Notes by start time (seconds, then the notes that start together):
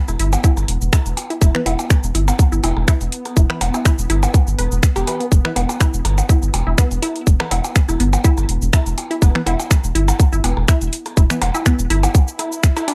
Already playing: B3
0.08 E1 E4, percussion blips, cabasa
0.20 G1 E4, open hi-hat
0.33 percussion blips, cabasa
0.44 E4, kick, cabasa
0.57 G1, percussion blips, cabasa
0.68 E1, open hi-hat
0.81 E1, cabasa
0.93 E4, finger snap, kick, percussion blips, cabasa
1.06 E1, open hi-hat, cabasa
1.17 open hi-hat, percussion blips
1.30 E4, open hi-hat
1.42 E1 E4, kick, percussion blips, cabasa
1.55 E3 B3 B4, finger snap
1.66 E1 E4, open hi-hat, percussion blips
1.79 cabasa, percussion blips
1.90 finger snap, kick, percussion blips, cabasa
2.03 E1, cabasa
2.15 G1 E4, open hi-hat
2.28 percussion blips, cabasa
2.39 kick, cabasa
2.52 G1 E4, cabasa
2.64 E1 E4, open hi-hat, percussion blips
2.77 E1, percussion blips
2.88 E4, finger snap, kick, cabasa
3.01 E1, open hi-hat, cabasa
3.12 open hi-hat
3.25 open hi-hat, percussion blips
3.37 E1 E4, kick, cabasa
3.50 E3 B3 B4, finger snap
3.61 E1, open hi-hat, percussion blips
3.74 E4, cabasa, percussion blips
3.85 E4, finger snap, kick, cabasa
3.98 E1, cabasa
4.10 G1 E4, open hi-hat, percussion blips
4.23 percussion blips, cabasa
4.34 kick, cabasa
4.47 G1, cabasa
4.58 E1 B4, open hi-hat, percussion blips
4.72 E1, cabasa
4.83 finger snap, kick, cabasa
4.96 E1 G4, open hi-hat, percussion blips, cabasa
5.07 E3 B3 B4, open hi-hat, percussion blips
5.20 B3, open hi-hat
5.32 E1, kick, cabasa
5.45 E3 B3 E4 B4, finger snap
5.56 E1 B3, open hi-hat, percussion blips
5.69 percussion blips, cabasa
5.80 E4, finger snap, kick, cabasa
5.94 E1, cabasa
6.05 G1, open hi-hat, percussion blips
6.18 percussion blips, cabasa
6.29 E4, kick, cabasa
6.42 G1, cabasa
6.54 E1, open hi-hat, percussion blips
6.67 E1 E4
6.78 B3, finger snap, kick, cabasa
6.91 E1, open hi-hat, cabasa
7.02 E4, open hi-hat, percussion blips
7.16 open hi-hat
7.27 E1, kick, cabasa
7.40 E3 B3 B4, finger snap, percussion blips
7.51 E1 E4, open hi-hat, percussion blips
7.64 cabasa, percussion blips
7.76 finger snap, kick, cabasa
7.89 E1 E4, percussion blips, cabasa
8.00 G1 B3, open hi-hat
8.13 percussion blips, cabasa
8.24 E4, kick, cabasa
8.37 G1, percussion blips, cabasa
8.49 E1, open hi-hat
8.62 E1, cabasa
8.73 E4, finger snap, kick, percussion blips, cabasa
8.86 E1, open hi-hat, cabasa
8.98 open hi-hat, percussion blips
9.11 E4, open hi-hat
9.22 E1 B3, kick, percussion blips, cabasa
9.35 E3 B3 B4, finger snap
9.46 E1 E4, open hi-hat, percussion blips
9.60 cabasa, percussion blips
9.71 finger snap, kick, percussion blips, cabasa
9.84 E1, cabasa
9.95 G1 E4, open hi-hat
10.08 percussion blips, cabasa
10.20 kick, cabasa
10.33 G1 E4, cabasa
10.44 E1 B3, open hi-hat, percussion blips
10.57 E1, percussion blips
10.68 E4, finger snap, kick, cabasa
10.81 E1, open hi-hat, cabasa
10.93 open hi-hat
11.06 open hi-hat, percussion blips
11.17 E1 E4, kick, cabasa
11.30 E3 B3 B4, finger snap, cabasa
11.42 E1, open hi-hat, percussion blips
11.54 E4, cabasa, percussion blips
11.66 B3, finger snap, kick, cabasa
11.79 E1, cabasa
11.90 G1 E4, open hi-hat, percussion blips
12.03 percussion blips, cabasa
12.15 kick, swell, cabasa
12.28 cabasa
12.39 E4, open hi-hat, percussion blips
12.52 cabasa
12.63 finger snap, kick, cabasa
12.77 E4, open hi-hat, percussion blips, cabasa
12.88 D4, open hi-hat, percussion blips